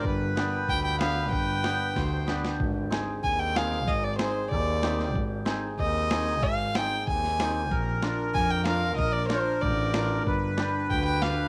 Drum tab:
SD |--o---o-|--o-o-oo|--o---oo|--o---oo|
BD |o---o---|o---o---|o---o---|o---o---|

SD |--o---oo|--o--oo-|--o---o-|--o---o-|
BD |o---o---|o---o---|o---o---|o---o---|

SD |--o---o-|
BD |o---o---|